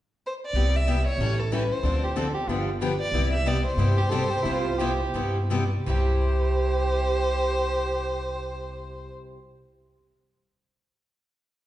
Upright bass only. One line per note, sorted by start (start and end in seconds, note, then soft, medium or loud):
0.53 1.05 C2 medium
1.18 1.70 A1 medium
1.83 2.35 D2 medium
2.47 2.99 G1 medium
3.12 3.64 C2 medium
3.77 4.31 G2 medium
4.44 5.00 C2 medium
5.14 5.73 G2 medium
5.87 9.07 C2 medium